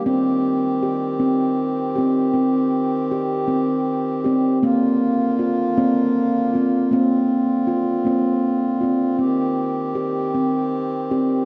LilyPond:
<<
  \new Staff \with { instrumentName = "Harmonium" } { \time 6/8 \key c \minor \tempo 4. = 52 c'2.~ | c'2. | bes2. | c'2.~ |
c'2. | }
  \new Staff \with { instrumentName = "Harmonium" } { \time 6/8 \key c \minor <ees g'>2.~ | <ees g'>2. | <d f'>2.~ | <d f'>2. |
<ees g'>2. | }
  \new Staff \with { instrumentName = "Steel tongue drum" } { \time 6/8 \key c \minor << { r4 g'8 c'4 g'8 | c'4 g'8 c'4 g'8 | bes4 f'8 bes4 f'8 | bes4 f'8 bes4 f'8 |
c'4 g'8 c'4 g'8 | } \\ { c'4. r4 c'8 | r2 r8 c'8 | c'4. c'4 c'8 | c'4. c'4 c'8 |
r2 r8 c'8 | } >> }
>>